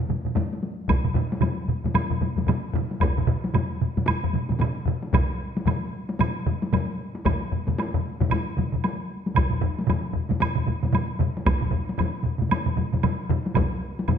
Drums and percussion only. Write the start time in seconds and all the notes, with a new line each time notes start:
0.09 taiko low-mid, taiko mid, taiko high
0.25 taiko low-mid, taiko mid, taiko high
0.35 taiko low-mid, taiko mid, taiko high
0.53 taiko high
0.63 taiko high
0.79 taiko high
0.88 taiko, taiko low-mid, taiko mid, taiko high, high woodblock
1.04 taiko low-mid, taiko mid
1.14 taiko low-mid, taiko mid
1.32 taiko high
1.41 taiko low-mid, taiko mid, taiko high, high woodblock
1.68 taiko low-mid, taiko mid
1.84 taiko low-mid, taiko mid, taiko high
1.95 taiko low-mid, taiko mid, taiko high, high woodblock
2.10 taiko low-mid, taiko mid
2.21 taiko low-mid, taiko mid, taiko high
2.36 taiko low-mid, taiko mid, taiko high
2.47 taiko low-mid, taiko mid, taiko high, high woodblock
2.73 taiko low-mid, taiko mid
2.91 taiko high
3.00 taiko, taiko low-mid, taiko mid, taiko high, high woodblock
3.17 taiko low-mid, taiko mid
3.27 taiko low-mid, taiko mid
3.44 taiko high
3.54 taiko low-mid, taiko mid, taiko high, high woodblock
3.81 taiko low-mid, taiko mid
3.97 taiko low-mid, taiko mid, taiko high
4.06 taiko low-mid, taiko mid, taiko high, high woodblock
4.23 taiko low-mid, taiko mid
4.33 taiko low-mid, taiko mid, taiko high
4.49 taiko low-mid, taiko mid, taiko high
4.60 taiko low-mid, taiko mid, taiko high, high woodblock
4.86 taiko low-mid, taiko mid
5.03 taiko high
5.13 taiko, taiko low-mid, taiko mid, taiko high, high woodblock
5.57 taiko high
5.66 taiko low-mid, taiko mid, taiko high, high woodblock
6.09 taiko high
6.19 taiko low-mid, taiko mid, taiko high, high woodblock
6.46 taiko low-mid, taiko mid
6.62 taiko high
6.73 taiko low-mid, taiko mid, taiko high, high woodblock
7.15 taiko high
7.25 taiko, taiko low-mid, taiko mid, taiko high, high woodblock
7.52 taiko low-mid, taiko mid
7.68 taiko low-mid, taiko mid, taiko high
7.79 taiko high, high woodblock
7.94 taiko low-mid, taiko mid
8.20 taiko low-mid, taiko mid, taiko high
8.30 taiko low-mid, taiko mid, taiko high, high woodblock
8.57 taiko low-mid, taiko mid, taiko high
8.72 taiko low-mid, taiko mid
8.84 taiko high, high woodblock
9.27 taiko high
9.34 taiko, taiko low-mid, taiko mid, taiko high, high woodblock
9.50 taiko low-mid, taiko mid
9.61 taiko low-mid, taiko mid
9.79 taiko high
9.88 taiko low-mid, taiko mid, taiko high, high woodblock
10.13 taiko low-mid, taiko mid
10.29 taiko low-mid, taiko mid, taiko high
10.40 taiko low-mid, taiko mid, taiko high, high woodblock
10.55 taiko low-mid, taiko mid
10.67 taiko low-mid, taiko mid, taiko high
10.83 taiko low-mid, taiko mid, taiko high
10.93 taiko low-mid, taiko mid, taiko high, high woodblock
11.19 taiko low-mid, taiko mid
11.37 taiko high
11.45 taiko, taiko low-mid, taiko mid, taiko high, high woodblock
11.61 taiko low-mid, taiko mid
11.71 taiko low-mid, taiko mid
11.89 taiko high
11.98 taiko low-mid, taiko mid, taiko high, high woodblock
12.23 taiko low-mid, taiko mid
12.38 taiko low-mid, taiko mid, taiko high
12.49 taiko low-mid, taiko mid, taiko high, high woodblock
12.66 taiko low-mid, taiko mid
12.77 taiko low-mid, taiko mid, taiko high
12.93 taiko low-mid, taiko mid, taiko high
13.03 taiko low-mid, taiko mid, taiko high, high woodblock
13.29 taiko low-mid, taiko mid
13.46 taiko high
13.54 taiko, taiko low-mid, taiko mid, taiko high, high woodblock
13.99 taiko high
14.08 taiko low-mid, taiko mid, taiko high, high woodblock